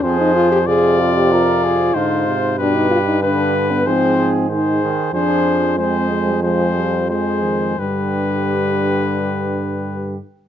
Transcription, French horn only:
\new Staff \with { instrumentName = "French horn" } { \time 4/4 \key f \dorian \tempo 4 = 93 c'16 ees'16 f'16 g'16 aes'8 f'16 g'16 f'4 ees'8. r16 | d'16 ees'16 f'16 ees'16 d'8. b16 c'4 ees'8 r8 | d'4 c'8 aes16 g16 f4 aes4 | g2.~ g8 r8 | }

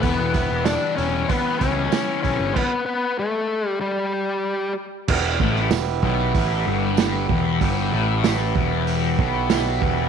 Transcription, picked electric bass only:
\new Staff \with { instrumentName = "Picked electric bass" } { \clef bass \time 4/4 \key e \dorian \tempo 4 = 95 e,,16 e,,8 e,,8 r16 e,,8 r8 cis,8 r8 b,,16 g,,16 | r1 | \key e \minor e,,8 a,,8 e,,8 b,,8 a,,8 g,,4 e,,8 | g,,8 a,,4 e,,4 b,,4 e,,8 | }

